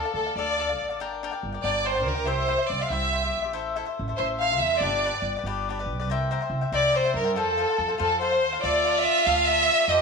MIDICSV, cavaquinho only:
0, 0, Header, 1, 2, 480
1, 0, Start_track
1, 0, Key_signature, -1, "major"
1, 0, Tempo, 423131
1, 1139, Time_signature, 6, 3, 24, 8
1, 11362, End_track
2, 0, Start_track
2, 0, Title_t, "Cavaquinho"
2, 0, Program_c, 0, 24
2, 58, Note_on_c, 0, 77, 41
2, 61, Note_on_c, 0, 74, 35
2, 71, Note_on_c, 0, 69, 32
2, 284, Note_off_c, 0, 77, 0
2, 287, Note_off_c, 0, 74, 0
2, 298, Note_on_c, 0, 77, 34
2, 300, Note_off_c, 0, 69, 0
2, 301, Note_on_c, 0, 74, 34
2, 314, Note_on_c, 0, 69, 29
2, 417, Note_off_c, 0, 77, 0
2, 418, Note_off_c, 0, 74, 0
2, 422, Note_off_c, 0, 69, 0
2, 434, Note_on_c, 0, 74, 57
2, 436, Note_on_c, 0, 62, 53
2, 436, Note_on_c, 0, 69, 55
2, 441, Note_on_c, 0, 77, 60
2, 645, Note_off_c, 0, 62, 0
2, 658, Note_off_c, 0, 69, 0
2, 658, Note_on_c, 0, 62, 40
2, 671, Note_off_c, 0, 74, 0
2, 671, Note_on_c, 0, 69, 48
2, 678, Note_off_c, 0, 77, 0
2, 684, Note_on_c, 0, 74, 48
2, 692, Note_on_c, 0, 77, 54
2, 771, Note_off_c, 0, 77, 0
2, 776, Note_off_c, 0, 74, 0
2, 780, Note_off_c, 0, 62, 0
2, 785, Note_on_c, 0, 77, 44
2, 787, Note_off_c, 0, 69, 0
2, 790, Note_on_c, 0, 74, 36
2, 809, Note_on_c, 0, 69, 36
2, 995, Note_off_c, 0, 77, 0
2, 1008, Note_on_c, 0, 77, 38
2, 1009, Note_off_c, 0, 74, 0
2, 1016, Note_off_c, 0, 69, 0
2, 1022, Note_on_c, 0, 74, 44
2, 1029, Note_on_c, 0, 69, 36
2, 1132, Note_off_c, 0, 77, 0
2, 1135, Note_off_c, 0, 74, 0
2, 1136, Note_on_c, 0, 62, 72
2, 1143, Note_off_c, 0, 69, 0
2, 1148, Note_on_c, 0, 74, 63
2, 1149, Note_on_c, 0, 70, 71
2, 1149, Note_on_c, 0, 79, 72
2, 1381, Note_off_c, 0, 62, 0
2, 1391, Note_off_c, 0, 70, 0
2, 1391, Note_off_c, 0, 74, 0
2, 1391, Note_off_c, 0, 79, 0
2, 1395, Note_on_c, 0, 62, 61
2, 1406, Note_on_c, 0, 70, 63
2, 1408, Note_on_c, 0, 74, 64
2, 1408, Note_on_c, 0, 79, 78
2, 1477, Note_off_c, 0, 79, 0
2, 1490, Note_on_c, 0, 79, 45
2, 1493, Note_off_c, 0, 70, 0
2, 1495, Note_off_c, 0, 74, 0
2, 1506, Note_on_c, 0, 70, 32
2, 1508, Note_off_c, 0, 62, 0
2, 1509, Note_on_c, 0, 74, 42
2, 1717, Note_off_c, 0, 79, 0
2, 1730, Note_on_c, 0, 79, 36
2, 1737, Note_off_c, 0, 74, 0
2, 1741, Note_off_c, 0, 70, 0
2, 1751, Note_on_c, 0, 74, 37
2, 1754, Note_on_c, 0, 70, 32
2, 1851, Note_off_c, 0, 70, 0
2, 1853, Note_off_c, 0, 79, 0
2, 1855, Note_off_c, 0, 74, 0
2, 1856, Note_on_c, 0, 62, 57
2, 1864, Note_on_c, 0, 70, 55
2, 1868, Note_on_c, 0, 74, 56
2, 1869, Note_on_c, 0, 79, 53
2, 2072, Note_off_c, 0, 62, 0
2, 2075, Note_off_c, 0, 70, 0
2, 2085, Note_off_c, 0, 74, 0
2, 2085, Note_on_c, 0, 62, 42
2, 2089, Note_on_c, 0, 70, 46
2, 2093, Note_off_c, 0, 79, 0
2, 2099, Note_on_c, 0, 74, 47
2, 2107, Note_on_c, 0, 79, 53
2, 2198, Note_off_c, 0, 79, 0
2, 2202, Note_off_c, 0, 74, 0
2, 2212, Note_on_c, 0, 79, 43
2, 2214, Note_off_c, 0, 62, 0
2, 2215, Note_off_c, 0, 70, 0
2, 2215, Note_on_c, 0, 74, 47
2, 2233, Note_on_c, 0, 70, 37
2, 2421, Note_off_c, 0, 79, 0
2, 2435, Note_on_c, 0, 79, 38
2, 2436, Note_off_c, 0, 74, 0
2, 2439, Note_off_c, 0, 70, 0
2, 2450, Note_on_c, 0, 74, 37
2, 2453, Note_on_c, 0, 70, 33
2, 2555, Note_on_c, 0, 64, 60
2, 2560, Note_off_c, 0, 70, 0
2, 2565, Note_on_c, 0, 67, 68
2, 2566, Note_off_c, 0, 79, 0
2, 2573, Note_off_c, 0, 74, 0
2, 2577, Note_on_c, 0, 72, 67
2, 2579, Note_on_c, 0, 76, 76
2, 2796, Note_off_c, 0, 64, 0
2, 2800, Note_off_c, 0, 67, 0
2, 2810, Note_on_c, 0, 64, 53
2, 2811, Note_off_c, 0, 72, 0
2, 2811, Note_off_c, 0, 76, 0
2, 2814, Note_on_c, 0, 67, 53
2, 2824, Note_on_c, 0, 72, 56
2, 2825, Note_on_c, 0, 76, 59
2, 2917, Note_off_c, 0, 76, 0
2, 2928, Note_off_c, 0, 72, 0
2, 2931, Note_on_c, 0, 76, 38
2, 2937, Note_off_c, 0, 64, 0
2, 2939, Note_off_c, 0, 67, 0
2, 2941, Note_on_c, 0, 72, 32
2, 2952, Note_on_c, 0, 67, 31
2, 3175, Note_off_c, 0, 76, 0
2, 3180, Note_off_c, 0, 72, 0
2, 3186, Note_off_c, 0, 67, 0
2, 3187, Note_on_c, 0, 76, 31
2, 3200, Note_on_c, 0, 72, 34
2, 3203, Note_on_c, 0, 67, 30
2, 3298, Note_off_c, 0, 72, 0
2, 3299, Note_off_c, 0, 67, 0
2, 3299, Note_on_c, 0, 64, 55
2, 3303, Note_off_c, 0, 76, 0
2, 3312, Note_on_c, 0, 72, 65
2, 3313, Note_on_c, 0, 67, 54
2, 3318, Note_on_c, 0, 76, 62
2, 3530, Note_off_c, 0, 64, 0
2, 3535, Note_off_c, 0, 67, 0
2, 3543, Note_on_c, 0, 64, 46
2, 3545, Note_off_c, 0, 72, 0
2, 3546, Note_off_c, 0, 76, 0
2, 3549, Note_on_c, 0, 67, 49
2, 3559, Note_on_c, 0, 72, 46
2, 3560, Note_on_c, 0, 76, 51
2, 3640, Note_off_c, 0, 76, 0
2, 3653, Note_on_c, 0, 76, 39
2, 3655, Note_off_c, 0, 72, 0
2, 3665, Note_off_c, 0, 64, 0
2, 3665, Note_off_c, 0, 67, 0
2, 3669, Note_on_c, 0, 72, 32
2, 3678, Note_on_c, 0, 67, 35
2, 3866, Note_off_c, 0, 76, 0
2, 3880, Note_off_c, 0, 72, 0
2, 3880, Note_on_c, 0, 76, 45
2, 3892, Note_off_c, 0, 67, 0
2, 3894, Note_on_c, 0, 72, 34
2, 3906, Note_on_c, 0, 67, 35
2, 3997, Note_off_c, 0, 72, 0
2, 4004, Note_off_c, 0, 67, 0
2, 4007, Note_on_c, 0, 64, 77
2, 4008, Note_off_c, 0, 76, 0
2, 4009, Note_on_c, 0, 69, 65
2, 4011, Note_on_c, 0, 72, 72
2, 4022, Note_on_c, 0, 76, 72
2, 4249, Note_off_c, 0, 64, 0
2, 4255, Note_off_c, 0, 69, 0
2, 4257, Note_off_c, 0, 72, 0
2, 4262, Note_on_c, 0, 64, 55
2, 4268, Note_off_c, 0, 76, 0
2, 4269, Note_on_c, 0, 69, 66
2, 4271, Note_on_c, 0, 72, 61
2, 4282, Note_on_c, 0, 76, 56
2, 4357, Note_off_c, 0, 76, 0
2, 4368, Note_off_c, 0, 72, 0
2, 4369, Note_off_c, 0, 69, 0
2, 4370, Note_on_c, 0, 76, 36
2, 4382, Note_on_c, 0, 72, 41
2, 4383, Note_on_c, 0, 69, 38
2, 4386, Note_off_c, 0, 64, 0
2, 4612, Note_off_c, 0, 76, 0
2, 4623, Note_off_c, 0, 72, 0
2, 4624, Note_off_c, 0, 69, 0
2, 4626, Note_on_c, 0, 76, 37
2, 4639, Note_on_c, 0, 72, 30
2, 4642, Note_on_c, 0, 69, 28
2, 4731, Note_off_c, 0, 69, 0
2, 4733, Note_off_c, 0, 72, 0
2, 4736, Note_off_c, 0, 76, 0
2, 4741, Note_on_c, 0, 64, 58
2, 4744, Note_on_c, 0, 69, 47
2, 4747, Note_on_c, 0, 72, 55
2, 4749, Note_on_c, 0, 76, 67
2, 4985, Note_off_c, 0, 64, 0
2, 4987, Note_off_c, 0, 72, 0
2, 4988, Note_off_c, 0, 69, 0
2, 4995, Note_off_c, 0, 76, 0
2, 4998, Note_on_c, 0, 64, 43
2, 5001, Note_on_c, 0, 72, 49
2, 5002, Note_on_c, 0, 69, 42
2, 5009, Note_on_c, 0, 76, 54
2, 5105, Note_off_c, 0, 76, 0
2, 5114, Note_off_c, 0, 64, 0
2, 5115, Note_off_c, 0, 72, 0
2, 5116, Note_off_c, 0, 69, 0
2, 5119, Note_on_c, 0, 76, 34
2, 5128, Note_on_c, 0, 72, 36
2, 5138, Note_on_c, 0, 69, 35
2, 5338, Note_off_c, 0, 76, 0
2, 5352, Note_on_c, 0, 76, 44
2, 5355, Note_off_c, 0, 72, 0
2, 5360, Note_off_c, 0, 69, 0
2, 5374, Note_on_c, 0, 69, 38
2, 5374, Note_on_c, 0, 72, 36
2, 5463, Note_on_c, 0, 62, 68
2, 5467, Note_off_c, 0, 76, 0
2, 5468, Note_off_c, 0, 69, 0
2, 5473, Note_off_c, 0, 72, 0
2, 5473, Note_on_c, 0, 67, 67
2, 5478, Note_on_c, 0, 71, 63
2, 5478, Note_on_c, 0, 74, 72
2, 5704, Note_off_c, 0, 62, 0
2, 5715, Note_off_c, 0, 67, 0
2, 5717, Note_off_c, 0, 71, 0
2, 5717, Note_off_c, 0, 74, 0
2, 5718, Note_on_c, 0, 62, 55
2, 5730, Note_on_c, 0, 67, 60
2, 5730, Note_on_c, 0, 71, 61
2, 5740, Note_on_c, 0, 74, 56
2, 5820, Note_off_c, 0, 74, 0
2, 5827, Note_off_c, 0, 71, 0
2, 5832, Note_off_c, 0, 62, 0
2, 5834, Note_on_c, 0, 74, 48
2, 5838, Note_off_c, 0, 67, 0
2, 5841, Note_on_c, 0, 71, 33
2, 5850, Note_on_c, 0, 67, 31
2, 6066, Note_off_c, 0, 74, 0
2, 6070, Note_off_c, 0, 71, 0
2, 6074, Note_off_c, 0, 67, 0
2, 6087, Note_on_c, 0, 74, 43
2, 6103, Note_on_c, 0, 71, 35
2, 6104, Note_on_c, 0, 67, 37
2, 6188, Note_off_c, 0, 67, 0
2, 6193, Note_off_c, 0, 71, 0
2, 6193, Note_off_c, 0, 74, 0
2, 6195, Note_on_c, 0, 62, 61
2, 6201, Note_on_c, 0, 67, 68
2, 6207, Note_on_c, 0, 71, 71
2, 6209, Note_on_c, 0, 74, 73
2, 6435, Note_off_c, 0, 62, 0
2, 6439, Note_off_c, 0, 67, 0
2, 6441, Note_off_c, 0, 71, 0
2, 6442, Note_off_c, 0, 74, 0
2, 6453, Note_on_c, 0, 62, 54
2, 6463, Note_on_c, 0, 71, 52
2, 6471, Note_on_c, 0, 67, 54
2, 6471, Note_on_c, 0, 74, 57
2, 6556, Note_off_c, 0, 74, 0
2, 6559, Note_off_c, 0, 62, 0
2, 6563, Note_off_c, 0, 71, 0
2, 6567, Note_off_c, 0, 67, 0
2, 6570, Note_on_c, 0, 74, 47
2, 6580, Note_on_c, 0, 67, 34
2, 6581, Note_on_c, 0, 71, 45
2, 6787, Note_off_c, 0, 74, 0
2, 6799, Note_off_c, 0, 67, 0
2, 6799, Note_off_c, 0, 71, 0
2, 6800, Note_on_c, 0, 74, 52
2, 6817, Note_on_c, 0, 71, 51
2, 6822, Note_on_c, 0, 67, 31
2, 6909, Note_off_c, 0, 74, 0
2, 6917, Note_off_c, 0, 71, 0
2, 6917, Note_on_c, 0, 70, 76
2, 6920, Note_off_c, 0, 67, 0
2, 6929, Note_on_c, 0, 72, 62
2, 6934, Note_on_c, 0, 79, 83
2, 6936, Note_on_c, 0, 76, 81
2, 7142, Note_off_c, 0, 70, 0
2, 7143, Note_off_c, 0, 72, 0
2, 7153, Note_off_c, 0, 76, 0
2, 7156, Note_on_c, 0, 70, 61
2, 7156, Note_on_c, 0, 72, 68
2, 7159, Note_off_c, 0, 79, 0
2, 7166, Note_on_c, 0, 76, 65
2, 7172, Note_on_c, 0, 79, 67
2, 7254, Note_off_c, 0, 79, 0
2, 7265, Note_off_c, 0, 76, 0
2, 7268, Note_on_c, 0, 79, 47
2, 7269, Note_off_c, 0, 70, 0
2, 7269, Note_off_c, 0, 72, 0
2, 7279, Note_on_c, 0, 76, 41
2, 7283, Note_on_c, 0, 72, 40
2, 7487, Note_off_c, 0, 79, 0
2, 7497, Note_off_c, 0, 76, 0
2, 7501, Note_on_c, 0, 79, 42
2, 7503, Note_off_c, 0, 72, 0
2, 7511, Note_on_c, 0, 76, 36
2, 7516, Note_on_c, 0, 72, 34
2, 7614, Note_off_c, 0, 72, 0
2, 7618, Note_off_c, 0, 79, 0
2, 7624, Note_off_c, 0, 76, 0
2, 7627, Note_on_c, 0, 72, 62
2, 7628, Note_on_c, 0, 70, 59
2, 7641, Note_on_c, 0, 76, 64
2, 7642, Note_on_c, 0, 79, 72
2, 7836, Note_off_c, 0, 70, 0
2, 7847, Note_off_c, 0, 72, 0
2, 7850, Note_on_c, 0, 70, 45
2, 7852, Note_off_c, 0, 79, 0
2, 7859, Note_off_c, 0, 76, 0
2, 7861, Note_on_c, 0, 72, 50
2, 7866, Note_on_c, 0, 79, 55
2, 7873, Note_on_c, 0, 76, 54
2, 7974, Note_off_c, 0, 79, 0
2, 7975, Note_off_c, 0, 70, 0
2, 7981, Note_off_c, 0, 72, 0
2, 7982, Note_off_c, 0, 76, 0
2, 7987, Note_on_c, 0, 79, 42
2, 7996, Note_on_c, 0, 72, 37
2, 7996, Note_on_c, 0, 76, 43
2, 8205, Note_off_c, 0, 79, 0
2, 8219, Note_on_c, 0, 79, 46
2, 8223, Note_off_c, 0, 76, 0
2, 8225, Note_off_c, 0, 72, 0
2, 8236, Note_on_c, 0, 76, 39
2, 8238, Note_on_c, 0, 72, 35
2, 8337, Note_off_c, 0, 79, 0
2, 8344, Note_off_c, 0, 72, 0
2, 8346, Note_off_c, 0, 76, 0
2, 8349, Note_on_c, 0, 69, 62
2, 8350, Note_on_c, 0, 65, 64
2, 8362, Note_on_c, 0, 72, 76
2, 8367, Note_on_c, 0, 77, 70
2, 8581, Note_off_c, 0, 65, 0
2, 8584, Note_off_c, 0, 69, 0
2, 8593, Note_off_c, 0, 72, 0
2, 8594, Note_on_c, 0, 65, 59
2, 8597, Note_on_c, 0, 69, 57
2, 8599, Note_off_c, 0, 77, 0
2, 8606, Note_on_c, 0, 72, 58
2, 8614, Note_on_c, 0, 77, 56
2, 8707, Note_off_c, 0, 65, 0
2, 8709, Note_off_c, 0, 69, 0
2, 8713, Note_off_c, 0, 72, 0
2, 8713, Note_off_c, 0, 77, 0
2, 8727, Note_on_c, 0, 77, 40
2, 8734, Note_on_c, 0, 72, 39
2, 8736, Note_on_c, 0, 69, 32
2, 8925, Note_off_c, 0, 77, 0
2, 8934, Note_off_c, 0, 72, 0
2, 8939, Note_on_c, 0, 77, 43
2, 8940, Note_off_c, 0, 69, 0
2, 8947, Note_on_c, 0, 72, 39
2, 8953, Note_on_c, 0, 69, 38
2, 9053, Note_on_c, 0, 65, 53
2, 9054, Note_off_c, 0, 69, 0
2, 9055, Note_off_c, 0, 72, 0
2, 9057, Note_off_c, 0, 77, 0
2, 9068, Note_on_c, 0, 69, 62
2, 9068, Note_on_c, 0, 72, 68
2, 9072, Note_on_c, 0, 77, 75
2, 9298, Note_off_c, 0, 65, 0
2, 9303, Note_off_c, 0, 69, 0
2, 9311, Note_on_c, 0, 65, 49
2, 9312, Note_off_c, 0, 72, 0
2, 9313, Note_off_c, 0, 77, 0
2, 9317, Note_on_c, 0, 69, 53
2, 9323, Note_on_c, 0, 72, 58
2, 9331, Note_on_c, 0, 77, 55
2, 9422, Note_off_c, 0, 77, 0
2, 9425, Note_off_c, 0, 72, 0
2, 9427, Note_off_c, 0, 65, 0
2, 9430, Note_off_c, 0, 69, 0
2, 9435, Note_on_c, 0, 77, 43
2, 9439, Note_on_c, 0, 72, 41
2, 9460, Note_on_c, 0, 69, 38
2, 9657, Note_off_c, 0, 77, 0
2, 9659, Note_off_c, 0, 72, 0
2, 9669, Note_off_c, 0, 69, 0
2, 9671, Note_on_c, 0, 77, 43
2, 9673, Note_on_c, 0, 72, 47
2, 9682, Note_on_c, 0, 69, 33
2, 9785, Note_off_c, 0, 72, 0
2, 9785, Note_off_c, 0, 77, 0
2, 9790, Note_off_c, 0, 69, 0
2, 9798, Note_on_c, 0, 65, 72
2, 9803, Note_on_c, 0, 74, 78
2, 9811, Note_on_c, 0, 69, 70
2, 9816, Note_on_c, 0, 76, 71
2, 10030, Note_off_c, 0, 65, 0
2, 10039, Note_off_c, 0, 74, 0
2, 10043, Note_off_c, 0, 69, 0
2, 10043, Note_on_c, 0, 65, 60
2, 10046, Note_off_c, 0, 76, 0
2, 10059, Note_on_c, 0, 69, 58
2, 10059, Note_on_c, 0, 74, 69
2, 10066, Note_on_c, 0, 76, 58
2, 10153, Note_off_c, 0, 65, 0
2, 10161, Note_off_c, 0, 74, 0
2, 10161, Note_off_c, 0, 76, 0
2, 10162, Note_off_c, 0, 69, 0
2, 10175, Note_on_c, 0, 76, 42
2, 10182, Note_on_c, 0, 74, 46
2, 10192, Note_on_c, 0, 69, 35
2, 10396, Note_off_c, 0, 76, 0
2, 10400, Note_off_c, 0, 74, 0
2, 10405, Note_off_c, 0, 69, 0
2, 10418, Note_on_c, 0, 76, 36
2, 10419, Note_on_c, 0, 74, 36
2, 10441, Note_on_c, 0, 69, 38
2, 10501, Note_off_c, 0, 69, 0
2, 10509, Note_on_c, 0, 65, 64
2, 10510, Note_off_c, 0, 74, 0
2, 10514, Note_off_c, 0, 76, 0
2, 10514, Note_on_c, 0, 69, 74
2, 10523, Note_on_c, 0, 74, 69
2, 10528, Note_on_c, 0, 76, 70
2, 10751, Note_off_c, 0, 65, 0
2, 10754, Note_off_c, 0, 69, 0
2, 10758, Note_off_c, 0, 74, 0
2, 10761, Note_off_c, 0, 76, 0
2, 10767, Note_on_c, 0, 65, 58
2, 10771, Note_on_c, 0, 69, 55
2, 10788, Note_on_c, 0, 74, 47
2, 10794, Note_on_c, 0, 76, 50
2, 10868, Note_off_c, 0, 76, 0
2, 10872, Note_off_c, 0, 74, 0
2, 10874, Note_off_c, 0, 65, 0
2, 10876, Note_off_c, 0, 69, 0
2, 10882, Note_on_c, 0, 76, 54
2, 10886, Note_on_c, 0, 74, 39
2, 10901, Note_on_c, 0, 69, 43
2, 11089, Note_off_c, 0, 76, 0
2, 11098, Note_off_c, 0, 69, 0
2, 11100, Note_off_c, 0, 74, 0
2, 11103, Note_on_c, 0, 76, 51
2, 11111, Note_on_c, 0, 69, 36
2, 11113, Note_on_c, 0, 74, 42
2, 11215, Note_off_c, 0, 69, 0
2, 11218, Note_off_c, 0, 76, 0
2, 11219, Note_on_c, 0, 65, 70
2, 11224, Note_off_c, 0, 74, 0
2, 11229, Note_on_c, 0, 69, 76
2, 11233, Note_on_c, 0, 72, 70
2, 11236, Note_on_c, 0, 75, 82
2, 11362, Note_off_c, 0, 65, 0
2, 11362, Note_off_c, 0, 69, 0
2, 11362, Note_off_c, 0, 72, 0
2, 11362, Note_off_c, 0, 75, 0
2, 11362, End_track
0, 0, End_of_file